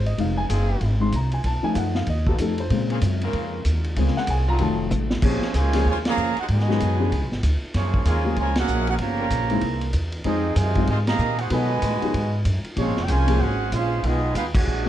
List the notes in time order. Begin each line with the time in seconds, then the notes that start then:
Already playing: G#1
0.06 D#5, ride
0.18 F1 G#3 C4 D#4 F5, kick, ride
0.37 G#5
0.49 F#1 F3 C4 D#4 G#4, kick, hi-hat pedal, ride
0.81 G#1, kick, ride
1.00 G#3 C4 D#4 C6
1.12 C2 A#5, kick, hi-hat pedal, ride
1.31 G#5, ride
1.44 B1 A5, kick, ride
1.63 F3 A3 D#4 G#5, muted upright bass stroke
1.73 F#2 F5, kick, hi-hat pedal, ride
1.78 F#5
1.95 F5, snare
2.07 D#2 D#5, kick, ride
2.27 F3 B3 D#4 F#4 A4, kick
2.38 F2 F3 A3 D#4 A4, kick, hi-hat pedal, ride
2.58 C5, ride
2.70 A#2 C#3 G#3 C4, kick, ride
2.90 C#3 A#3 C4 G#4, ride
3.01 F#2, kick, hi-hat pedal, ride
3.21 C#3 A#3 C4 A#4, ride
3.33 F2, kick, ride
3.65 D#2, kick, hi-hat pedal, ride
3.84 ride
3.96 C#2 C#3 G#3 A#3 C4 G#4, kick, ride
4.07 snare
4.15 F#5, muted upright bass stroke, snare
4.27 C2 G#5, kick, hi-hat pedal, ride
4.47 D#3 F#3 A3 F4 A#5
4.59 F1 D#3 F#3 A3 A5, kick, ride
4.91 A1, hi-hat pedal, mid tom
5.10 snare
5.22 A#1 F3 G#3 A#3 C4 C#4 F4 G#4 C5 C#5, kick, crash
5.42 muted upright bass stroke, snare
5.54 C#2 C#3 F3 G#3 A#3 C#4 F4 G#4 C5 C#5 G#5, kick, hi-hat pedal, ride
5.73 F3 A#3 C4 C#4 G#4, snare, ride
5.85 D#2 C#3 F3 G#3, kick
5.90 F4 C5 C#5 G#5
6.05 C#3 F3 A#3, snare, ride
6.09 G#4 C#5 F5 A#5
6.17 F2, hi-hat pedal
6.36 F#4, muted upright bass stroke, ride
6.41 D#4 G#4 C5 F#5
6.48 G#2 B2 D#3 G#3 D#5, kick, ride
6.52 F#4 B4 G#5
6.59 snare
6.68 D#3 F#3 G#3 B3 D#4 F#4 G#4, snare
6.80 F#2, kick, hi-hat pedal, ride
7.00 F3 B3 C#4 D4 G#4
7.11 C#2, kick, ride
7.22 B1
7.32 G#1, snare
7.43 D2, kick, hi-hat pedal, ride
7.62 muted upright bass stroke
7.74 F#2 F3 A#3 C#4 F4 G#4 C#5, kick, snare, ride
7.94 kick
8.05 D#2 C#3 F3 G#3 A#3 F4 G#4 A#4 C#5 G#5, kick, hi-hat pedal, ride
8.25 F#3 A#3 C#4 F4 G#4
8.36 C#2 C#3 F3 G#3 F4 A#4 C#5 G#5, kick, ride
8.55 A#3 C#4 F#4 A#4 F#5, snare, ride
8.60 C#4 G#4
8.67 A#1, hi-hat pedal
8.87 A#3 C#4 F#4 G#4 A#4 F#5, ride
8.98 G1 C#3 F3 A#3 G4 C#5 F5 A#5, kick, ride
9.19 G3 C#4 F4 A#4
9.30 A#1, kick, hi-hat pedal, ride
9.49 G#3 C4 D#4 E4 A#4, ride
9.61 C2, kick, ride
9.81 ride
9.93 E2, kick, hi-hat pedal, ride
10.12 ride
10.24 F2 F3 G#3 C4 D#4 F4 G#4 C5 D#5, kick, ride
10.56 F#2 C3 D#3 G#3 F4 C5 D#5 G#5, kick, hi-hat pedal, ride
10.75 G#3 C4 D#4 F4 D#5, kick, ride
10.87 G#2 C3 D#3 G#3 F4 C5 D#5 G#5, kick, ride
11.07 C3 D#3 A#3 G#4 D#5 F5 A#5, snare, ride
11.19 A#2, hi-hat pedal
11.38 D#4 F#4 G#4 C5 F#5, ride
11.50 B2 D#3 F#3 G#3 B3 D#4 F4 F#4 A4 B4 D#5 G#5, kick, ride
11.82 A2, kick, hi-hat pedal, ride
12.02 F#3 B3 D#4 F4 G#4, muted upright bass stroke, ride
12.14 G#2, kick, ride
12.45 F#2, kick, hi-hat pedal, ride
12.64 muted upright bass stroke, ride
12.76 A#1 F3 G#3 A#3 C4 C#4 F4 G#4 C#5, kick, ride
12.86 G#1
12.96 F1, snare
13.04 C2 F3 G#3 A#3 C#4 G#4 G5, hi-hat pedal, ride
13.08 F4 C5 C#5 G#5, kick
13.27 F3 A#3 C4 C#4 G#4, ride
13.40 G#1 G#3 C#4 F#4 G#4 C5 F#5, kick
13.71 A#1 G#3 C#4 F4 G#4 C5 F5, kick, hi-hat pedal, ride
14.02 B1 D#3 G#3 B3 D#4 F4 G#4 D#5, kick, ride
14.35 D#2 G#3 B3 D#4 F4 G#4 B4 F5, kick, hi-hat pedal, ride
14.55 G#3 D4 F#4 G#4 C#5 F#5, kick, crash
14.66 A#1
14.85 D3 G#3 A#3 F#4